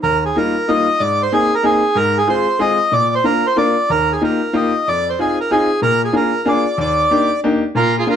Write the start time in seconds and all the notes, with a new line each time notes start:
0.03 D#2 A#4
0.25 G#4
0.35 G3 A#3 D#4 F4 A#4
0.68 G3 A#3 D#4 F4 D#5
1.00 G#2 D5
1.22 C5
1.32 A#3 C4 D#4 G#4
1.55 A#4
1.63 A#3 C4 D#4 G#4
1.95 G#2 A#4
2.18 G#4
2.27 G#3 C4 F4 G#4 C5
2.59 G#3 C4 F4 G#4 D#5
2.92 A#2 D5
3.15 C5
3.24 A#3 D4 F4 A#4
3.47 C5
3.56 A#3 D4 F4 A#4 D5
3.90 D#2 A#4
4.12 G#4
4.21 A#3 D#4 F4 G4 A#4
4.53 A#3 D#4 F4 G4 D#5
4.88 F2 D5
5.09 C5
5.19 C4 D#4 F4 G#4
5.41 A#4
5.51 C4 D#4 F4 G#4
5.82 A#2 A#4
6.05 G#4
6.13 A#3 D4 F4 G#4 A#4
6.45 A#3 D4 F4 G#4 D5
6.78 D#2 D5
7.11 A#3 D4 D#4 G4
7.44 A#3 D4 D#4 G4
7.75 A#2 F4 A#4
7.99 F4 G#4
8.07 A#3 D4 F4 A#4